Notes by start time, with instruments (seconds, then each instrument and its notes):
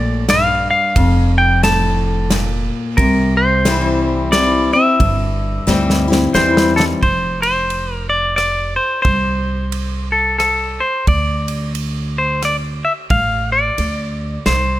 Already playing: upright bass A#1, steel-string acoustic guitar A2 A#2, clean electric guitar D5
0.29 steel-string acoustic guitar G2, clean electric guitar F5, snare, ride
0.71 clean electric guitar F5
0.96 upright bass F1, steel-string acoustic guitar F2, kick, ride
1.38 clean electric guitar G5
1.63 steel-string acoustic guitar A2, clean electric guitar A5, snare, ride
2.30 steel-string acoustic guitar A#2, snare, ride
2.97 upright bass C2, steel-string acoustic guitar C3, clean electric guitar A#4, kick, ride
3.37 clean electric guitar C5
3.65 steel-string acoustic guitar E3 G3 C4 E4, snare, ride
4.32 steel-string acoustic guitar E3 G3 C4 E4, clean electric guitar D5, snare, ride
4.73 steel-string acoustic guitar C4 E4, clean electric guitar E5
5.00 upright bass G1, steel-string acoustic guitar G2, kick, ride
5.67 upright bass D2, steel-string acoustic guitar E3 G3 C4 E4, snare
5.90 snare
6.02 clean electric guitar D5
6.08 steel-string acoustic guitar C4 E4
6.12 snare
6.34 upright bass E2, steel-string acoustic guitar E3 G3 C4 E4, clean electric guitar C5, snare
6.57 snare
6.76 clean electric guitar A4, snare
7.03 upright bass F1, clean electric guitar C5, kick, ride
7.42 clean electric guitar C5, ride
7.70 ride
7.95 clean electric guitar A#4
8.09 clean electric guitar D5
8.36 clean electric guitar D5, cross-stick, ride
8.76 clean electric guitar C5
9.02 upright bass C2, clean electric guitar C5, kick, ride
9.72 ride
10.12 clean electric guitar A4
10.38 clean electric guitar A4, cross-stick, ride
10.80 clean electric guitar C5
11.07 upright bass D2, clean electric guitar D5, kick, ride
11.48 ride
11.75 ride
12.18 clean electric guitar C5
12.42 clean electric guitar D5, cross-stick, ride
12.85 clean electric guitar E5
13.10 upright bass A1, clean electric guitar F5, kick, ride
13.52 clean electric guitar D5
13.78 upright bass D2, ride
14.46 upright bass C2, clean electric guitar C5, snare, ride